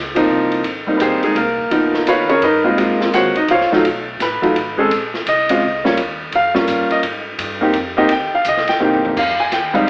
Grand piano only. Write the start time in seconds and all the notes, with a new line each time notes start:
0.15 F3 A#3 C4 D#4
0.87 G3 A#3 C4 D#4
0.97 B4
1.01 C4 G4 G#4 C5
1.24 G#3 C4 D#4 G#4
1.37 A#3 A#4
1.71 F3 A#3 B3 D#4
2.08 F4 B4 C#5 F5
2.29 C#4 G#4 A#4 C#5
2.44 D#4 A#4 B4 D#5
2.64 G#3 A#3 C4 F4
2.77 G#3 A#3 C4 F4
3.14 F#4 C5 C#5 F#5
3.37 D#4 D#5
3.51 F4 C5 C#5 F5
3.72 F#3 A3 D#4 F4
4.22 B4
4.42 F#3 A3 D#4 F4
4.77 G#3 C4 C#4 G#4 A4
5.29 D#5
5.50 G#3 C4 C#4 F4
5.84 G3 A#3 C#4 F4 C#5
6.35 F5
6.54 G3 A#3 C#4 F4
6.92 D#5
7.61 A#3 C4 D#4 G4
7.97 A#3 C4 D#4 G4 D#5
8.12 G5
8.35 F5
8.48 D#5
8.69 G5
8.80 A#3 C4 D#4 G4
9.19 F5
9.40 G#5
9.53 G5
9.73 G3 G#3 C4 D#4 F5